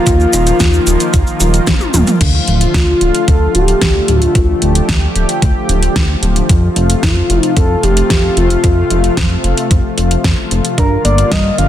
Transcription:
Already playing: analog synth pad D#3 F3 A#3 F4, analog synth lead F4
0.07 analog synth bass D#2, synth arpeggio sound F4, kick, closed hi-hat, shaker
0.20 shaker
0.33 analog synth bass D#1, synth arpeggio sound D#4, closed hi-hat, shaker
0.47 closed hi-hat, shaker
0.60 analog synth bass D#2, synth arpeggio sound A#3, kick, snare, closed hi-hat, shaker
0.74 shaker
0.87 analog synth bass D#1, synth arpeggio sound F3, closed hi-hat, shaker
1.00 closed hi-hat, shaker
1.14 analog synth bass D#2, synth arpeggio sound F4, kick, closed hi-hat, shaker
1.27 shaker
1.40 analog synth bass D#1, synth arpeggio sound F4, closed hi-hat, shaker
1.54 closed hi-hat, shaker
1.67 analog synth bass D#2, synth arpeggio sound A#3, kick, snare, closed hi-hat, high tom, shaker
1.81 high tom, shaker
1.94 analog synth bass D#1, synth arpeggio sound F3, closed hi-hat, mid tom, shaker
2.07 closed hi-hat, mid tom, shaker
2.21 analog synth bass D2, analog synth pad D3 F3 A3 F4, kick, closed hi-hat, crash
2.48 analog synth bass D1, closed hi-hat
2.61 closed hi-hat
2.74 analog synth bass D2, analog synth lead F4, kick, snare, closed hi-hat
3.01 analog synth bass D1, closed hi-hat
3.15 closed hi-hat
3.28 analog synth bass D2, analog synth lead A4, kick, closed hi-hat
3.55 analog synth bass D1, analog synth lead G4, closed hi-hat
3.68 closed hi-hat
3.81 analog synth bass D2, kick, snare, closed hi-hat
4.08 analog synth bass D1, analog synth lead F4, closed hi-hat
4.22 closed hi-hat
4.35 analog synth bass D2, analog synth pad G4, kick, closed hi-hat
4.62 analog synth bass D1, closed hi-hat
4.75 closed hi-hat
4.89 analog synth bass D2, kick, snare, closed hi-hat
5.16 analog synth bass D1, closed hi-hat
5.29 closed hi-hat
5.42 analog synth bass D2, kick, closed hi-hat
5.69 analog synth bass D1, closed hi-hat
5.83 closed hi-hat
5.96 analog synth bass D2, kick, snare, closed hi-hat
6.23 analog synth bass D1, closed hi-hat
6.36 closed hi-hat
6.49 analog synth bass F2, analog synth pad C3 A3 F4, kick, closed hi-hat
6.76 analog synth bass F1, closed hi-hat
6.90 closed hi-hat
7.03 analog synth bass F2, analog synth lead F4, kick, snare, closed hi-hat
7.30 analog synth bass F1, closed hi-hat
7.43 closed hi-hat
7.57 analog synth bass F2, analog synth lead A4, kick, closed hi-hat
7.83 analog synth bass F1, analog synth lead G4, closed hi-hat
7.97 closed hi-hat
8.10 analog synth bass F2, kick, snare, closed hi-hat
8.37 analog synth bass F1, analog synth lead F4, closed hi-hat
8.50 closed hi-hat
8.64 analog synth bass F2, kick, closed hi-hat
8.90 analog synth bass F1, closed hi-hat
9.04 closed hi-hat
9.17 analog synth bass F2, kick, snare, closed hi-hat
9.44 analog synth bass F1, closed hi-hat
9.57 closed hi-hat
9.71 analog synth bass F2, kick, closed hi-hat
9.98 analog synth bass F1, closed hi-hat
10.11 closed hi-hat
10.24 analog synth bass F2, kick, snare, closed hi-hat
10.51 analog synth bass F1, closed hi-hat
10.65 closed hi-hat
10.78 analog synth bass G2, analog synth pad D3 G3 A#3 F4, synth arpeggio sound D4, analog synth lead A#4, kick, closed hi-hat
11.05 analog synth bass G1, synth arpeggio sound A#3, analog synth lead D5, closed hi-hat
11.18 closed hi-hat
11.32 analog synth bass G2, synth arpeggio sound G3, analog synth lead D#5, kick, snare, closed hi-hat
11.58 analog synth bass G1, synth arpeggio sound F3, analog synth lead F5, closed hi-hat

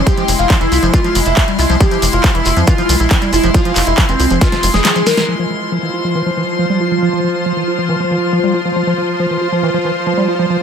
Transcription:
Already playing: ambient pad G#3 E4, string section C6
0.07 acid bass F3, analog synth lead G4, kick, closed hi-hat, shekere
0.17 acid bass F3, closed hi-hat, shekere
0.28 analog synth bass F1, acid bass F3, open hi-hat, shekere
0.39 analog synth bass F1, analog synth lead F4, closed hi-hat, shekere
0.50 acid bass F3, kick, clap, closed hi-hat, shekere
0.61 analog synth bass F1, acid bass E3, analog synth lead E4, closed hi-hat, shekere
0.72 analog synth bass C2, acid bass F4, open hi-hat, shekere
0.83 analog synth bass F1, acid bass F3, closed hi-hat, shekere
0.93 acid bass E3, analog synth lead F4, kick, closed hi-hat, shekere
1.04 acid bass F3, closed hi-hat, shekere
1.15 analog synth bass F1, acid bass E3, open hi-hat, shekere
1.25 analog synth bass F1, analog synth lead E4, closed hi-hat, shekere
1.37 acid bass F3, kick, clap, closed hi-hat, shekere
1.48 acid bass G3, closed hi-hat, shekere
1.59 analog synth bass C2, analog synth lead E4, acid bass F4, open hi-hat, shekere
1.70 analog synth bass C2, acid bass F3, closed hi-hat, shekere
1.80 acid bass F3, analog synth lead G4, kick, closed hi-hat, shekere
1.91 acid bass F3, closed hi-hat, shekere
2.02 analog synth bass F1, acid bass F3, open hi-hat, shekere
2.13 analog synth bass F1, analog synth lead F4, closed hi-hat, shekere
2.24 acid bass F3, kick, clap, closed hi-hat, shekere
2.35 analog synth bass F1, acid bass E3, analog synth lead E4, closed hi-hat, shekere
2.45 analog synth bass F1, acid bass F4, open hi-hat, shekere
2.57 analog synth bass F2, acid bass F3, closed hi-hat, shekere
2.67 acid bass E3, analog synth lead F4, kick, closed hi-hat, shekere
2.78 acid bass F3, closed hi-hat, shekere
2.89 analog synth bass C2, acid bass E3, open hi-hat, shekere
3.00 analog synth bass A#1, analog synth lead E4, closed hi-hat, shekere
3.11 acid bass F3, kick, clap, closed hi-hat, shekere
3.21 acid bass G3, closed hi-hat, shekere
3.33 analog synth bass F1, analog synth lead E4, acid bass F4, open hi-hat, shekere
3.43 analog synth bass F1, acid bass F3, closed hi-hat, shekere
3.54 acid bass F3, analog synth lead F4, kick, closed hi-hat, shekere
3.65 acid bass F3, closed hi-hat, shekere
3.76 analog synth bass F1, acid bass F3, clap, open hi-hat, shekere
3.87 analog synth bass F1, analog synth lead E4, closed hi-hat, shekere
3.98 acid bass F3, kick, clap, closed hi-hat, shekere
4.09 analog synth bass F1, acid bass E3, analog synth lead C4, closed hi-hat, shekere
4.20 analog synth bass C2, acid bass F4, open hi-hat, shekere
4.30 analog synth bass F1, acid bass F3, closed hi-hat, shekere
4.41 acid bass E3, analog synth lead F4, kick, snare, closed hi-hat, shekere
4.52 acid bass F3, snare, closed hi-hat, shekere
4.63 analog synth bass F1, acid bass F3, open hi-hat, shekere
4.74 analog synth bass F1, analog synth lead G#4, snare, closed hi-hat, shekere
4.84 acid bass F3, snare, clap, closed hi-hat, shekere
4.96 acid bass F3, closed hi-hat, shekere
5.06 acid bass G3, analog synth lead A#4, snare, open hi-hat, shekere
5.17 acid bass F3, snare, closed hi-hat, shekere
5.28 ambient pad F3 F4, acid bass F3, string section F4
5.39 acid bass F3
5.50 acid bass F3
5.68 acid bass F3, string section C5
5.83 acid bass E3
5.94 acid bass F4
6.04 acid bass F3
6.15 acid bass E3
6.26 acid bass F3
6.37 acid bass E3
6.59 acid bass F3
6.70 acid bass G3
6.81 acid bass F4
6.91 acid bass F3
7.02 acid bass F3
7.13 acid bass F3
7.24 acid bass F3
7.46 acid bass F3
7.57 acid bass E3
7.67 acid bass F4
7.78 acid bass F3
7.89 acid bass E3
8.00 acid bass F3
8.11 acid bass E3
8.33 acid bass F3
8.44 acid bass G3
8.54 acid bass F4
8.65 acid bass F3
8.76 acid bass F3
8.87 acid bass F3
8.98 acid bass F3
9.20 acid bass F3
9.30 acid bass E3
9.41 acid bass F4
9.52 acid bass F3
9.63 acid bass E3
9.74 acid bass F3
9.85 acid bass E3
10.07 acid bass F3
10.17 acid bass G3
10.28 acid bass F4
10.39 acid bass F3
10.50 acid bass F3

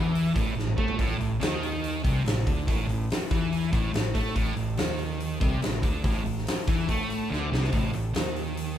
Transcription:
Already playing: fingered electric bass E2, distorted electric guitar E3
0.15 open hi-hat
0.35 fingered electric bass A1, distorted electric guitar A2, kick, open hi-hat
0.56 fingered electric bass A1, distorted electric guitar A2, snare
0.67 mid tom
0.77 fingered electric bass A2, distorted electric guitar A3, kick
0.88 floor tom
0.98 fingered electric bass A1, distorted electric guitar A2, kick, open hi-hat
1.19 fingered electric bass A1, distorted electric guitar A2, open hi-hat
1.40 fingered electric bass D#2, distorted electric guitar D#3, snare, open hi-hat
1.63 open hi-hat
1.84 open hi-hat
2.03 fingered electric bass C2, distorted electric guitar C3, kick, open hi-hat
2.25 fingered electric bass A1, distorted electric guitar A2, snare, open hi-hat
2.47 fingered electric bass D2, distorted electric guitar D3, kick, open hi-hat
2.67 fingered electric bass A1, distorted electric guitar A2, kick, open hi-hat
2.88 fingered electric bass A1, distorted electric guitar A2, open hi-hat
3.10 snare, open hi-hat
3.30 fingered electric bass E2, distorted electric guitar E3, kick, open hi-hat
3.52 open hi-hat
3.72 fingered electric bass A1, distorted electric guitar A2, kick, open hi-hat
3.93 fingered electric bass A1, distorted electric guitar A2, snare, open hi-hat
4.15 fingered electric bass A2, distorted electric guitar A3, kick, open hi-hat
4.36 fingered electric bass A1, distorted electric guitar A2, kick, open hi-hat
4.57 fingered electric bass A1, distorted electric guitar A2, open hi-hat
4.77 fingered electric bass D#2, distorted electric guitar D#3, snare, open hi-hat
4.99 open hi-hat
5.20 open hi-hat
5.40 fingered electric bass C2, distorted electric guitar C3, kick, open hi-hat
5.62 fingered electric bass A1, distorted electric guitar A2, snare, open hi-hat
5.82 fingered electric bass D2, distorted electric guitar D3, kick, open hi-hat
6.03 fingered electric bass A1, distorted electric guitar A2, kick, open hi-hat
6.24 fingered electric bass A1, distorted electric guitar A2, open hi-hat
6.38 snare
6.47 snare, open hi-hat
6.67 fingered electric bass E2, distorted electric guitar E3, kick, open hi-hat
6.88 fingered electric bass A2, distorted electric guitar A3, kick, open hi-hat
7.10 open hi-hat
7.30 fingered electric bass D2, distorted electric guitar D3, snare
7.52 fingered electric bass C2, distorted electric guitar C3, snare
7.64 snare
7.72 fingered electric bass A1, distorted electric guitar A2, kick, open hi-hat
7.93 fingered electric bass A1, distorted electric guitar A2, open hi-hat
8.14 fingered electric bass D#2, distorted electric guitar D#3, snare, open hi-hat
8.36 open hi-hat
8.57 open hi-hat

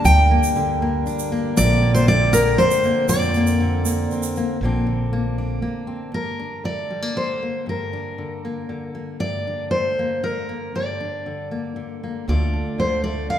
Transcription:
Already playing: steel-string acoustic guitar D3 A#3 D4, harmonium G3 D4 A#4
0.05 upright bass D2, steel-string acoustic guitar G2 G5, shaker
0.31 steel-string acoustic guitar A#3
0.43 shaker
0.56 steel-string acoustic guitar D3, shaker
0.82 steel-string acoustic guitar A#3
1.06 steel-string acoustic guitar D4, shaker
1.19 shaker
1.32 steel-string acoustic guitar A#3
1.57 upright bass A#1, steel-string acoustic guitar A#2 D5, harmonium D3 C4, shaker
1.82 steel-string acoustic guitar A#3
1.94 steel-string acoustic guitar C5, shaker
2.07 steel-string acoustic guitar D3 D5, shaker
2.33 steel-string acoustic guitar A#3 A#4, shaker
2.58 steel-string acoustic guitar C4 C5, shaker
2.71 shaker
2.83 steel-string acoustic guitar A#3, shaker
3.08 upright bass F2, steel-string acoustic guitar A#2 D5, shaker
3.22 shaker
3.34 steel-string acoustic guitar A#3, shaker
3.47 shaker
3.60 steel-string acoustic guitar D3
3.85 steel-string acoustic guitar A#3, shaker
4.11 steel-string acoustic guitar C4, shaker
4.23 shaker
4.35 steel-string acoustic guitar A#3, shaker
4.61 upright bass A#1, steel-string acoustic guitar A#2 D3 A#3 C4
4.65 steel-string acoustic guitar D4
4.87 steel-string acoustic guitar D3
5.13 steel-string acoustic guitar A#3
5.38 steel-string acoustic guitar D4
5.62 steel-string acoustic guitar A#3
5.87 steel-string acoustic guitar C4
6.12 steel-string acoustic guitar G2 A#4
6.39 steel-string acoustic guitar D4
6.64 steel-string acoustic guitar D3 D5
6.90 steel-string acoustic guitar G3
7.02 steel-string acoustic guitar A#3
7.15 steel-string acoustic guitar D3 C5
7.42 steel-string acoustic guitar A#3
7.66 steel-string acoustic guitar G2 A#4
7.93 steel-string acoustic guitar D4
8.18 steel-string acoustic guitar D3
8.45 steel-string acoustic guitar A#3
8.69 steel-string acoustic guitar D3
8.95 steel-string acoustic guitar A#3
9.20 steel-string acoustic guitar G2 D5
9.47 steel-string acoustic guitar D4
9.71 steel-string acoustic guitar D3 C5
9.99 steel-string acoustic guitar A#3
10.23 steel-string acoustic guitar D3 A#4
10.49 steel-string acoustic guitar A#3
10.75 steel-string acoustic guitar G2 D5
11.00 steel-string acoustic guitar D4
11.26 steel-string acoustic guitar D3
11.51 steel-string acoustic guitar A#3
11.76 steel-string acoustic guitar D3
12.04 steel-string acoustic guitar A#3
12.28 steel-string acoustic guitar D2 D3 A3 D4 F4 D5, upright bass D2
12.53 steel-string acoustic guitar D4
12.78 steel-string acoustic guitar D3 C5
13.04 steel-string acoustic guitar A3 D5
13.30 steel-string acoustic guitar D3 F5

